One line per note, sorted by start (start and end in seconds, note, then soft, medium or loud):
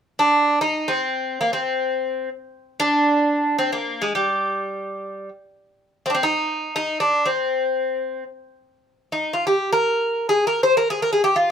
0.19 0.61 D4 medium
0.61 0.89 D#4 medium
0.88 1.40 C4 medium
1.41 1.53 A#3 medium
1.53 2.28 C4 medium
2.80 3.58 D4 medium
3.58 3.72 C4 medium
3.73 4.01 A#3 medium
4.02 4.14 G#3 medium
4.15 5.29 G3 medium
6.06 6.10 C4 medium
6.10 6.14 D4 medium
6.14 6.23 C4 medium
6.23 6.75 D#4 medium
6.76 6.99 D#4 medium
7.00 7.26 D4 medium
7.26 8.23 C4 medium
9.12 9.33 D#4 medium
9.33 9.46 F4 medium
9.47 9.70 G4 medium
9.73 10.29 A#4 medium
10.29 10.45 G#4 medium
10.47 10.62 A#4 medium
10.63 10.76 C5 medium
10.77 10.88 A#4 medium
10.90 11.00 G#4 medium
11.02 11.12 A#4 medium
11.13 11.23 G#4 medium
11.24 11.35 G4 medium
11.36 11.49 F4 medium